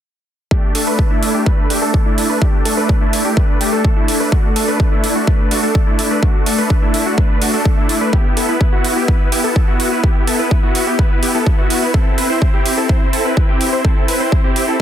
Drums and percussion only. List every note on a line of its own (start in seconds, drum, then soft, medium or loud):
0.51 kick loud
0.75 open hi-hat loud
0.99 kick loud
1.23 open hi-hat medium
1.46 kick loud
1.70 open hi-hat medium
1.94 kick loud
2.18 open hi-hat medium
2.42 kick loud
2.65 open hi-hat loud
2.89 kick loud
3.13 open hi-hat medium
3.37 kick loud
3.61 open hi-hat loud
3.85 kick loud
4.08 open hi-hat loud
4.32 kick loud
4.56 open hi-hat loud
4.80 kick loud
5.04 open hi-hat loud
5.27 kick loud
5.51 open hi-hat loud
5.75 kick loud
5.99 open hi-hat loud
6.23 kick loud
6.46 open hi-hat loud
6.70 kick loud
6.94 open hi-hat loud
7.18 kick loud
7.42 open hi-hat loud
7.65 kick loud
7.89 open hi-hat loud
8.13 kick loud
8.37 open hi-hat loud
8.61 kick loud
8.84 open hi-hat loud
9.08 kick loud
9.32 open hi-hat medium
9.56 kick loud
9.80 open hi-hat medium
10.04 kick loud
10.27 open hi-hat medium
10.51 kick loud
10.75 open hi-hat medium
10.99 kick loud
11.23 open hi-hat medium
11.46 kick loud
11.70 open hi-hat medium
11.94 kick loud
12.18 open hi-hat medium
12.42 kick loud
12.66 open hi-hat medium
12.89 kick loud
13.13 open hi-hat medium
13.37 kick loud
13.61 open hi-hat medium
13.85 kick loud
14.08 open hi-hat medium
14.32 kick loud
14.56 open hi-hat medium